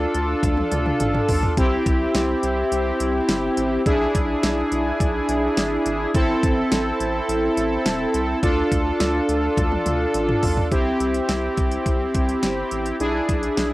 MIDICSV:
0, 0, Header, 1, 4, 480
1, 0, Start_track
1, 0, Tempo, 571429
1, 1322, Time_signature, 4, 2, 24, 8
1, 11537, End_track
2, 0, Start_track
2, 0, Title_t, "Analog polysynth"
2, 0, Program_c, 0, 90
2, 0, Note_on_c, 0, 62, 80
2, 0, Note_on_c, 0, 65, 72
2, 0, Note_on_c, 0, 69, 89
2, 1288, Note_off_c, 0, 65, 0
2, 1289, Note_off_c, 0, 62, 0
2, 1289, Note_off_c, 0, 69, 0
2, 1322, Note_on_c, 0, 64, 73
2, 1323, Note_on_c, 0, 60, 81
2, 1323, Note_on_c, 0, 67, 87
2, 3209, Note_off_c, 0, 60, 0
2, 3209, Note_off_c, 0, 64, 0
2, 3209, Note_off_c, 0, 67, 0
2, 3245, Note_on_c, 0, 62, 77
2, 3245, Note_on_c, 0, 64, 75
2, 3245, Note_on_c, 0, 68, 88
2, 5130, Note_off_c, 0, 62, 0
2, 5130, Note_off_c, 0, 64, 0
2, 5130, Note_off_c, 0, 68, 0
2, 5163, Note_on_c, 0, 60, 77
2, 5163, Note_on_c, 0, 64, 75
2, 5163, Note_on_c, 0, 69, 89
2, 7049, Note_off_c, 0, 60, 0
2, 7049, Note_off_c, 0, 64, 0
2, 7049, Note_off_c, 0, 69, 0
2, 7083, Note_on_c, 0, 62, 80
2, 7083, Note_on_c, 0, 65, 72
2, 7083, Note_on_c, 0, 69, 89
2, 8969, Note_off_c, 0, 62, 0
2, 8969, Note_off_c, 0, 65, 0
2, 8969, Note_off_c, 0, 69, 0
2, 9001, Note_on_c, 0, 67, 85
2, 9002, Note_on_c, 0, 60, 80
2, 9002, Note_on_c, 0, 64, 74
2, 10888, Note_off_c, 0, 60, 0
2, 10888, Note_off_c, 0, 64, 0
2, 10888, Note_off_c, 0, 67, 0
2, 10922, Note_on_c, 0, 62, 78
2, 10922, Note_on_c, 0, 64, 72
2, 10922, Note_on_c, 0, 68, 84
2, 11537, Note_off_c, 0, 62, 0
2, 11537, Note_off_c, 0, 64, 0
2, 11537, Note_off_c, 0, 68, 0
2, 11537, End_track
3, 0, Start_track
3, 0, Title_t, "Analog synth bass"
3, 0, Program_c, 1, 38
3, 122, Note_on_c, 1, 38, 102
3, 290, Note_off_c, 1, 38, 0
3, 361, Note_on_c, 1, 38, 105
3, 529, Note_off_c, 1, 38, 0
3, 602, Note_on_c, 1, 38, 100
3, 770, Note_off_c, 1, 38, 0
3, 842, Note_on_c, 1, 33, 106
3, 1010, Note_off_c, 1, 33, 0
3, 1083, Note_on_c, 1, 35, 97
3, 1250, Note_off_c, 1, 35, 0
3, 1321, Note_on_c, 1, 36, 110
3, 1490, Note_off_c, 1, 36, 0
3, 1563, Note_on_c, 1, 36, 105
3, 1731, Note_off_c, 1, 36, 0
3, 1803, Note_on_c, 1, 36, 106
3, 1971, Note_off_c, 1, 36, 0
3, 2043, Note_on_c, 1, 36, 105
3, 2211, Note_off_c, 1, 36, 0
3, 2283, Note_on_c, 1, 36, 102
3, 2450, Note_off_c, 1, 36, 0
3, 2522, Note_on_c, 1, 36, 104
3, 2690, Note_off_c, 1, 36, 0
3, 2762, Note_on_c, 1, 31, 104
3, 2930, Note_off_c, 1, 31, 0
3, 3002, Note_on_c, 1, 33, 93
3, 3170, Note_off_c, 1, 33, 0
3, 3242, Note_on_c, 1, 35, 110
3, 3410, Note_off_c, 1, 35, 0
3, 3483, Note_on_c, 1, 35, 98
3, 3651, Note_off_c, 1, 35, 0
3, 3722, Note_on_c, 1, 35, 101
3, 3890, Note_off_c, 1, 35, 0
3, 3962, Note_on_c, 1, 35, 97
3, 4130, Note_off_c, 1, 35, 0
3, 4202, Note_on_c, 1, 35, 103
3, 4370, Note_off_c, 1, 35, 0
3, 4442, Note_on_c, 1, 35, 105
3, 4610, Note_off_c, 1, 35, 0
3, 4682, Note_on_c, 1, 32, 96
3, 4850, Note_off_c, 1, 32, 0
3, 4921, Note_on_c, 1, 32, 96
3, 5089, Note_off_c, 1, 32, 0
3, 5162, Note_on_c, 1, 33, 118
3, 5330, Note_off_c, 1, 33, 0
3, 5404, Note_on_c, 1, 33, 100
3, 5571, Note_off_c, 1, 33, 0
3, 5641, Note_on_c, 1, 33, 100
3, 5810, Note_off_c, 1, 33, 0
3, 5882, Note_on_c, 1, 33, 99
3, 6050, Note_off_c, 1, 33, 0
3, 6121, Note_on_c, 1, 33, 107
3, 6290, Note_off_c, 1, 33, 0
3, 6361, Note_on_c, 1, 33, 106
3, 6529, Note_off_c, 1, 33, 0
3, 6601, Note_on_c, 1, 28, 88
3, 6770, Note_off_c, 1, 28, 0
3, 6841, Note_on_c, 1, 36, 97
3, 7009, Note_off_c, 1, 36, 0
3, 7081, Note_on_c, 1, 38, 109
3, 7250, Note_off_c, 1, 38, 0
3, 7323, Note_on_c, 1, 38, 106
3, 7491, Note_off_c, 1, 38, 0
3, 7562, Note_on_c, 1, 38, 104
3, 7730, Note_off_c, 1, 38, 0
3, 7802, Note_on_c, 1, 38, 97
3, 7970, Note_off_c, 1, 38, 0
3, 8041, Note_on_c, 1, 38, 100
3, 8210, Note_off_c, 1, 38, 0
3, 8282, Note_on_c, 1, 38, 104
3, 8450, Note_off_c, 1, 38, 0
3, 8522, Note_on_c, 1, 33, 109
3, 8690, Note_off_c, 1, 33, 0
3, 8762, Note_on_c, 1, 35, 99
3, 8930, Note_off_c, 1, 35, 0
3, 9002, Note_on_c, 1, 36, 107
3, 9170, Note_off_c, 1, 36, 0
3, 9241, Note_on_c, 1, 36, 107
3, 9410, Note_off_c, 1, 36, 0
3, 9481, Note_on_c, 1, 36, 108
3, 9649, Note_off_c, 1, 36, 0
3, 9723, Note_on_c, 1, 36, 106
3, 9891, Note_off_c, 1, 36, 0
3, 9962, Note_on_c, 1, 36, 99
3, 10130, Note_off_c, 1, 36, 0
3, 10202, Note_on_c, 1, 36, 100
3, 10370, Note_off_c, 1, 36, 0
3, 10442, Note_on_c, 1, 31, 99
3, 10610, Note_off_c, 1, 31, 0
3, 10682, Note_on_c, 1, 33, 93
3, 10850, Note_off_c, 1, 33, 0
3, 10922, Note_on_c, 1, 35, 107
3, 11090, Note_off_c, 1, 35, 0
3, 11163, Note_on_c, 1, 35, 98
3, 11330, Note_off_c, 1, 35, 0
3, 11403, Note_on_c, 1, 35, 98
3, 11537, Note_off_c, 1, 35, 0
3, 11537, End_track
4, 0, Start_track
4, 0, Title_t, "Drums"
4, 122, Note_on_c, 9, 42, 68
4, 206, Note_off_c, 9, 42, 0
4, 361, Note_on_c, 9, 36, 95
4, 362, Note_on_c, 9, 48, 60
4, 364, Note_on_c, 9, 42, 80
4, 445, Note_off_c, 9, 36, 0
4, 446, Note_off_c, 9, 48, 0
4, 448, Note_off_c, 9, 42, 0
4, 481, Note_on_c, 9, 48, 57
4, 565, Note_off_c, 9, 48, 0
4, 601, Note_on_c, 9, 42, 91
4, 602, Note_on_c, 9, 47, 71
4, 685, Note_off_c, 9, 42, 0
4, 686, Note_off_c, 9, 47, 0
4, 721, Note_on_c, 9, 47, 69
4, 805, Note_off_c, 9, 47, 0
4, 839, Note_on_c, 9, 42, 87
4, 841, Note_on_c, 9, 45, 84
4, 923, Note_off_c, 9, 42, 0
4, 925, Note_off_c, 9, 45, 0
4, 961, Note_on_c, 9, 45, 81
4, 1045, Note_off_c, 9, 45, 0
4, 1079, Note_on_c, 9, 46, 76
4, 1081, Note_on_c, 9, 43, 104
4, 1163, Note_off_c, 9, 46, 0
4, 1165, Note_off_c, 9, 43, 0
4, 1201, Note_on_c, 9, 43, 92
4, 1285, Note_off_c, 9, 43, 0
4, 1321, Note_on_c, 9, 36, 115
4, 1321, Note_on_c, 9, 42, 68
4, 1405, Note_off_c, 9, 36, 0
4, 1405, Note_off_c, 9, 42, 0
4, 1563, Note_on_c, 9, 36, 93
4, 1563, Note_on_c, 9, 42, 77
4, 1647, Note_off_c, 9, 36, 0
4, 1647, Note_off_c, 9, 42, 0
4, 1802, Note_on_c, 9, 38, 103
4, 1802, Note_on_c, 9, 42, 76
4, 1886, Note_off_c, 9, 38, 0
4, 1886, Note_off_c, 9, 42, 0
4, 2042, Note_on_c, 9, 42, 69
4, 2126, Note_off_c, 9, 42, 0
4, 2284, Note_on_c, 9, 42, 78
4, 2368, Note_off_c, 9, 42, 0
4, 2522, Note_on_c, 9, 42, 87
4, 2606, Note_off_c, 9, 42, 0
4, 2760, Note_on_c, 9, 42, 88
4, 2761, Note_on_c, 9, 38, 106
4, 2844, Note_off_c, 9, 42, 0
4, 2845, Note_off_c, 9, 38, 0
4, 3000, Note_on_c, 9, 42, 81
4, 3084, Note_off_c, 9, 42, 0
4, 3242, Note_on_c, 9, 36, 114
4, 3243, Note_on_c, 9, 42, 69
4, 3326, Note_off_c, 9, 36, 0
4, 3327, Note_off_c, 9, 42, 0
4, 3484, Note_on_c, 9, 36, 95
4, 3484, Note_on_c, 9, 42, 81
4, 3568, Note_off_c, 9, 36, 0
4, 3568, Note_off_c, 9, 42, 0
4, 3723, Note_on_c, 9, 38, 104
4, 3723, Note_on_c, 9, 42, 74
4, 3807, Note_off_c, 9, 38, 0
4, 3807, Note_off_c, 9, 42, 0
4, 3962, Note_on_c, 9, 42, 70
4, 4046, Note_off_c, 9, 42, 0
4, 4202, Note_on_c, 9, 36, 100
4, 4205, Note_on_c, 9, 42, 79
4, 4286, Note_off_c, 9, 36, 0
4, 4289, Note_off_c, 9, 42, 0
4, 4442, Note_on_c, 9, 42, 86
4, 4526, Note_off_c, 9, 42, 0
4, 4681, Note_on_c, 9, 38, 106
4, 4681, Note_on_c, 9, 42, 88
4, 4765, Note_off_c, 9, 38, 0
4, 4765, Note_off_c, 9, 42, 0
4, 4920, Note_on_c, 9, 42, 78
4, 5004, Note_off_c, 9, 42, 0
4, 5162, Note_on_c, 9, 36, 115
4, 5163, Note_on_c, 9, 42, 69
4, 5246, Note_off_c, 9, 36, 0
4, 5247, Note_off_c, 9, 42, 0
4, 5404, Note_on_c, 9, 36, 99
4, 5404, Note_on_c, 9, 42, 80
4, 5488, Note_off_c, 9, 36, 0
4, 5488, Note_off_c, 9, 42, 0
4, 5642, Note_on_c, 9, 38, 106
4, 5642, Note_on_c, 9, 42, 77
4, 5726, Note_off_c, 9, 38, 0
4, 5726, Note_off_c, 9, 42, 0
4, 5883, Note_on_c, 9, 42, 70
4, 5967, Note_off_c, 9, 42, 0
4, 6125, Note_on_c, 9, 42, 79
4, 6209, Note_off_c, 9, 42, 0
4, 6362, Note_on_c, 9, 42, 86
4, 6446, Note_off_c, 9, 42, 0
4, 6600, Note_on_c, 9, 42, 88
4, 6601, Note_on_c, 9, 38, 102
4, 6684, Note_off_c, 9, 42, 0
4, 6685, Note_off_c, 9, 38, 0
4, 6839, Note_on_c, 9, 42, 81
4, 6923, Note_off_c, 9, 42, 0
4, 7081, Note_on_c, 9, 36, 112
4, 7081, Note_on_c, 9, 42, 71
4, 7165, Note_off_c, 9, 36, 0
4, 7165, Note_off_c, 9, 42, 0
4, 7323, Note_on_c, 9, 36, 94
4, 7324, Note_on_c, 9, 42, 76
4, 7407, Note_off_c, 9, 36, 0
4, 7408, Note_off_c, 9, 42, 0
4, 7563, Note_on_c, 9, 38, 106
4, 7563, Note_on_c, 9, 42, 76
4, 7647, Note_off_c, 9, 38, 0
4, 7647, Note_off_c, 9, 42, 0
4, 7803, Note_on_c, 9, 42, 70
4, 7887, Note_off_c, 9, 42, 0
4, 8042, Note_on_c, 9, 36, 96
4, 8042, Note_on_c, 9, 48, 60
4, 8044, Note_on_c, 9, 42, 80
4, 8126, Note_off_c, 9, 36, 0
4, 8126, Note_off_c, 9, 48, 0
4, 8128, Note_off_c, 9, 42, 0
4, 8163, Note_on_c, 9, 48, 55
4, 8247, Note_off_c, 9, 48, 0
4, 8282, Note_on_c, 9, 42, 86
4, 8282, Note_on_c, 9, 47, 70
4, 8366, Note_off_c, 9, 42, 0
4, 8366, Note_off_c, 9, 47, 0
4, 8521, Note_on_c, 9, 42, 90
4, 8605, Note_off_c, 9, 42, 0
4, 8642, Note_on_c, 9, 45, 82
4, 8726, Note_off_c, 9, 45, 0
4, 8759, Note_on_c, 9, 46, 78
4, 8762, Note_on_c, 9, 43, 100
4, 8843, Note_off_c, 9, 46, 0
4, 8846, Note_off_c, 9, 43, 0
4, 8881, Note_on_c, 9, 43, 93
4, 8965, Note_off_c, 9, 43, 0
4, 9001, Note_on_c, 9, 36, 112
4, 9001, Note_on_c, 9, 42, 67
4, 9085, Note_off_c, 9, 36, 0
4, 9085, Note_off_c, 9, 42, 0
4, 9243, Note_on_c, 9, 42, 75
4, 9327, Note_off_c, 9, 42, 0
4, 9360, Note_on_c, 9, 42, 52
4, 9444, Note_off_c, 9, 42, 0
4, 9481, Note_on_c, 9, 38, 98
4, 9481, Note_on_c, 9, 42, 75
4, 9565, Note_off_c, 9, 38, 0
4, 9565, Note_off_c, 9, 42, 0
4, 9721, Note_on_c, 9, 42, 64
4, 9723, Note_on_c, 9, 36, 91
4, 9805, Note_off_c, 9, 42, 0
4, 9807, Note_off_c, 9, 36, 0
4, 9840, Note_on_c, 9, 42, 54
4, 9924, Note_off_c, 9, 42, 0
4, 9961, Note_on_c, 9, 36, 94
4, 9963, Note_on_c, 9, 42, 72
4, 10045, Note_off_c, 9, 36, 0
4, 10047, Note_off_c, 9, 42, 0
4, 10201, Note_on_c, 9, 42, 81
4, 10202, Note_on_c, 9, 36, 88
4, 10285, Note_off_c, 9, 42, 0
4, 10286, Note_off_c, 9, 36, 0
4, 10321, Note_on_c, 9, 42, 49
4, 10405, Note_off_c, 9, 42, 0
4, 10439, Note_on_c, 9, 38, 97
4, 10439, Note_on_c, 9, 42, 83
4, 10523, Note_off_c, 9, 38, 0
4, 10523, Note_off_c, 9, 42, 0
4, 10679, Note_on_c, 9, 42, 74
4, 10763, Note_off_c, 9, 42, 0
4, 10800, Note_on_c, 9, 42, 60
4, 10884, Note_off_c, 9, 42, 0
4, 10921, Note_on_c, 9, 42, 66
4, 11005, Note_off_c, 9, 42, 0
4, 11163, Note_on_c, 9, 36, 88
4, 11163, Note_on_c, 9, 42, 76
4, 11247, Note_off_c, 9, 36, 0
4, 11247, Note_off_c, 9, 42, 0
4, 11281, Note_on_c, 9, 42, 51
4, 11365, Note_off_c, 9, 42, 0
4, 11402, Note_on_c, 9, 38, 100
4, 11402, Note_on_c, 9, 42, 72
4, 11486, Note_off_c, 9, 38, 0
4, 11486, Note_off_c, 9, 42, 0
4, 11537, End_track
0, 0, End_of_file